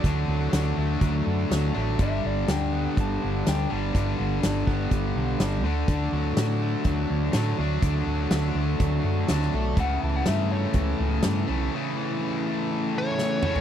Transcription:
<<
  \new Staff \with { instrumentName = "Electric slide guitar" } { \time 4/4 \key d \major \tempo 4 = 123 r1 | e''8 d''8 g''4 a''4 g''8 r8 | r1 | r1 |
r1 | fis''8 a''16 fis''16 e''8 cis''4 r4. | r1 | }
  \new Staff \with { instrumentName = "Lead electric guitar" } { \time 4/4 \key d \major r1 | r1 | r1 | r1 |
r1 | r1 | r2 r8 cis''4. | }
  \new Staff \with { instrumentName = "Distorted electric guitar" } { \clef bass \time 4/4 \key d \major <d a d'>2.~ <d a d'>8 <d a d'>8 | <g, d g>2.~ <g, d g>8 <g, d g>8 | <g, d g>2.~ <g, d g>8 <d a d'>8~ | <d a d'>2. <d a d'>8 <d a d'>8~ |
<d a d'>2. <d a d'>8 r8 | <a, e a>2.~ <a, e a>8 <a, e a>8 | <a, e a>2.~ <a, e a>8 <a, e a>8 | }
  \new Staff \with { instrumentName = "Overdriven electric guitar" } { \clef bass \time 4/4 \key d \major <d fis d'>8 fis8 d8 a8 fis8 d8 fis8 d'8 | g,8 d8 d8 b8 g8 d8 g8 d'8 | g,8 d8 d8 b8 g8 d8 g8 d8 | d8 fis8 d8 a8 fis8 d8 fis8 d'8 |
d8 fis8 d8 a8 fis8 d8 fis8 d'8 | cis8 e8 cis8 a8 e8 cis8 e8 cis'8 | cis8 e8 cis8 a8 e8 cis8 e8 cis'8 | }
  \new Staff \with { instrumentName = "Fingered electric bass" } { \clef bass \time 4/4 \key d \major d,8 d,8 d,8 d,8 d,8 fis,8 d,8 a,,8 | g,,8 g,,8 d,4 g,,8 g,,8 d,8 g,,8 | g,,8 g,,8 g,,8 g,,8 g,,8 b,,8 g,,8 d,8 | d,8 d,8 a,4 d,8 d,8 a,8 d,8 |
d,8 d,8 d,8 d,8 d,8 fis,8 d,8 b,,8 | cis,8 cis,8 g,4 cis,8 cis,8 g,8 b,,8 | r1 | }
  \new DrumStaff \with { instrumentName = "Drums" } \drummode { \time 4/4 <hh bd>4 <hh sn>4 <hh bd>4 <hh sn>4 | <hh bd>4 <hh sn>4 <hh bd>4 <hh sn>4 | <hh bd>4 <hh sn>8 bd8 <hh bd>4 <hh sn>4 | <hh bd>4 <hh sn>4 <hh bd>4 <hh sn>4 |
<hh bd>4 <hh sn>4 <hh bd>4 <hh sn>16 sn8. | <hh bd>4 <hh sn>4 <hh bd>4 <hh sn>4 | r4 r4 r4 sn8 toml16 tomfh16 | }
>>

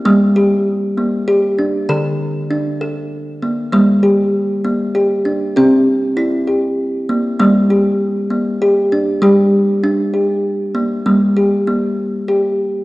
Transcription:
<<
  \new Staff \with { instrumentName = "Kalimba" } { \time 3/4 \key g \minor \tempo 4 = 98 bes8 g'4 bes8 g'8 d'8 | a'4 d'8 a'4 bes8 | bes8 g'4 bes8 g'8 d'8 | g'4 e'8 g'4 bes8 |
bes8 g'4 bes8 g'8 d'8 | g'4 d'8 g'4 bes8 | bes8 g'8 bes4 g'4 | }
  \new Staff \with { instrumentName = "Kalimba" } { \clef bass \time 3/4 \key g \minor g2 r4 | d2 r4 | g2 r4 | c'2 r4 |
g2 r4 | g2 r4 | g2 r4 | }
>>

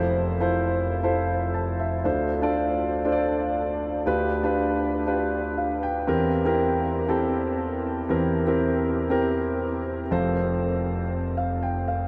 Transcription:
<<
  \new Staff \with { instrumentName = "Grand piano" } { \time 4/4 \key f \major \tempo 4 = 119 << { r2. a''8 e''8~ | e''8 r2. r8 | r2. f''8 g''8~ | g''8 r2. r8 |
r1 | r2 r8 f''8 g''8 f''8 | } \\ { <e' f' a' c''>8 r16 <e' f' a' c''>4 r16 <e' f' a' c''>4.~ <e' f' a' c''>16 r16 | <d' f' a' c''>8. <d' f' a' d''>4 r16 <d' f' a' c'' d''>4.~ <d' f' a' c'' d''>16 r16 | <d' f' g' b'>8. <d' f' g' b'>4 r16 <d' f' g' b'>4.~ <d' f' g' b'>16 r16 | <c' e' g' bes'>8. <c' e' g' bes'>4 r16 <c' e' g' a'>4.~ <c' e' g' a'>16 r16 |
<c' e' g' bes'>8. <c' e' g' bes'>4 r16 <c' e' g' bes'>4.~ <c' e' g' bes'>16 r16 | <c' f' a' c''>4.~ <c' f' a' c''>16 r2 r16 | } >> }
  \new Staff \with { instrumentName = "Grand piano" } { \clef bass \time 4/4 \key f \major <f,, f,>2.~ <f,, f,>8 r8 | <d, d>1 | <d, d>1 | <e, e>1 |
<e, e>1 | <f,, f,>1 | }
>>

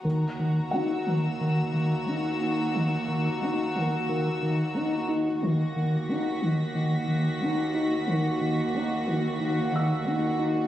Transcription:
<<
  \new Staff \with { instrumentName = "Violin section" } { \time 4/4 \key ees \phrygian \tempo 4 = 90 << { r4 fes'''2.~ | fes'''2.~ fes'''8 r8 | r4 ces''''2.~ | ces''''2.~ ces''''8 r8 | } \\ { bes''1~ | bes''2.~ bes''8 r8 | bes'''1~ | bes'''2.~ bes'''8 r8 | } >> }
  \new Staff \with { instrumentName = "Felt piano" } { \time 4/4 \key ees \phrygian r4 <ges' ges''>2. | r1 | r1 | r2 r8 fes'''4. | }
  \new Staff \with { instrumentName = "Violin section" } { \time 4/4 \key ees \phrygian ges'1~ | ges'1 | ges'1~ | ges'1 | }
  \new Staff \with { instrumentName = "Analog synth bass" } { \clef bass \time 4/4 \key ees \phrygian ees8 ees8 ees'8 ees8 ees8 ees8 ees'8 ees'8 | ees8 ees8 ees'8 ees8 ees8 ees8 ees'8 ees'8 | ees8 ees8 ees'8 ees8 ees8 ees8 ees'8 ees'8 | ees8 ees8 ees'8 ees8 ees8 ees8 ees'8 ees'8 | }
  \new Staff \with { instrumentName = "Cello section" } { \clef bass \time 4/4 \key ees \phrygian ees,1~ | ees,1 | ees,1~ | ees,1 | }
  \new Staff \with { instrumentName = "Double bass section" } { \clef bass \time 4/4 \key ees \phrygian ees,4 r2. | r1 | ees,4 r2. | r1 | }
>>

